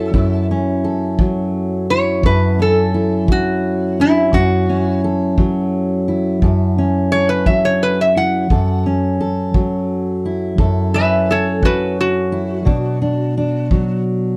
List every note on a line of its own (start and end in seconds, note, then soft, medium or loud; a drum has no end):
0.00 0.13 F#2 medium
0.00 1.19 F#3 medium
0.00 0.50 C#4 medium
0.00 0.14 E4 medium
0.00 0.46 A4 medium
0.00 0.84 A4 medium
0.14 2.24 F#2 medium
0.14 1.90 E4 medium
0.14 kick medium
0.51 2.59 C#4 medium
0.84 2.25 A4 medium
1.19 3.28 F#3 medium
1.19 kick medium
1.90 2.94 E4 soft
1.90 2.23 C#5 medium
2.23 4.33 F#2 medium
2.23 5.04 A4 medium
2.23 2.58 B4 medium
2.23 kick medium
2.59 3.99 C#4 medium
2.59 3.28 A4 medium
2.94 4.34 E4 medium
3.28 5.38 F#3 medium
3.28 3.97 F#4 medium
3.28 kick medium
4.00 4.69 C#4 medium
4.00 4.33 E4 medium
4.33 6.42 F#2 medium
4.33 6.08 E4 medium
4.33 5.01 F#4 medium
4.33 kick medium
4.69 6.77 C#4 medium
5.04 6.43 A4 medium
5.38 7.47 F#3 medium
5.38 kick medium
6.08 8.15 E4 medium
6.42 8.49 F#2 medium
6.42 7.13 A4 medium
6.42 kick medium
6.78 8.47 C#4 medium
7.12 8.51 A4 medium
7.12 7.28 C#5 medium
7.29 7.46 B4 medium
7.46 9.54 F#3 medium
7.46 7.63 E5 medium
7.46 kick medium
7.65 7.81 C#5 medium
7.83 7.99 B4 medium
8.01 8.16 E5 medium
8.16 8.46 E4 medium
8.16 8.84 F#5 medium
8.50 10.57 F#2 medium
8.50 9.20 A4 medium
8.50 kick medium
8.86 10.94 C#4 medium
9.21 10.59 A4 medium
9.54 11.62 F#3 medium
9.54 kick medium
10.25 12.31 E4 soft
10.58 12.65 F#2 medium
10.58 11.30 A4 medium
10.58 kick medium
10.94 12.63 C#4 medium
10.94 11.28 B4 medium
10.94 11.28 E5 medium
11.31 11.61 A4 medium
11.31 12.68 A4 medium
11.31 11.63 C#5 medium
11.63 13.71 F#3 medium
11.63 11.96 F#4 medium
11.63 11.97 B4 medium
11.63 kick medium
12.01 14.03 F#4 medium
12.32 12.62 E4 medium
12.65 14.37 B2 medium
12.65 13.01 D4 medium
12.65 kick medium
13.02 13.37 D4 medium
13.38 14.37 D4 medium
13.71 14.37 F#3 medium
13.71 kick medium